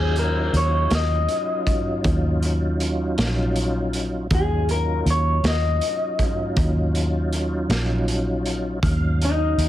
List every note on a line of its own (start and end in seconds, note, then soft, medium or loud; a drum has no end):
0.00 0.49 D#2 medium
0.00 4.27 F#3 medium
0.00 4.27 C#4 medium
0.00 4.27 D#4 medium
0.00 4.27 F4 medium
0.00 0.16 G#4 medium
0.16 0.54 A#4 medium
0.16 closed hi-hat soft
0.53 0.88 D#2 medium
0.53 0.92 C#5 medium
0.53 closed hi-hat soft
0.91 1.26 D#2 medium
0.91 snare medium
0.91 closed hi-hat medium
0.95 2.40 D#5 medium
1.29 closed hi-hat soft
1.67 kick medium
1.67 closed hi-hat medium
2.04 3.14 D#2 medium
2.04 kick medium
2.04 closed hi-hat medium
2.43 closed hi-hat medium
2.80 closed hi-hat soft
3.18 4.27 A#1 medium
3.18 snare medium
3.18 closed hi-hat medium
3.56 closed hi-hat medium
3.93 closed hi-hat soft
4.31 5.02 D#2 medium
4.31 8.79 F#3 medium
4.31 8.79 C#4 medium
4.31 8.80 D#4 medium
4.31 8.79 F4 medium
4.31 kick medium
4.31 closed hi-hat medium
4.35 4.69 G#4 medium
4.69 5.06 A#4 medium
4.69 closed hi-hat soft
5.06 5.41 D#2 medium
5.06 closed hi-hat soft
5.10 5.45 C#5 medium
5.43 5.78 D#2 medium
5.43 snare medium
5.43 closed hi-hat medium
5.48 6.93 D#5 medium
5.81 closed hi-hat medium
6.19 kick medium
6.19 closed hi-hat soft
6.56 7.66 D#2 medium
6.56 kick medium
6.56 closed hi-hat medium
6.95 closed hi-hat medium
7.33 closed hi-hat soft
7.69 8.79 A#1 medium
7.69 snare medium
7.69 closed hi-hat medium
8.08 closed hi-hat medium
8.46 closed hi-hat soft
8.83 9.54 D#2 medium
8.83 9.69 F#3 medium
8.83 9.69 C#4 medium
8.83 9.69 D#4 medium
8.83 9.69 F5 medium
8.83 kick medium
8.83 closed hi-hat medium
9.22 9.69 D#4 medium
9.22 closed hi-hat medium
9.58 9.69 D#2 medium
9.58 closed hi-hat medium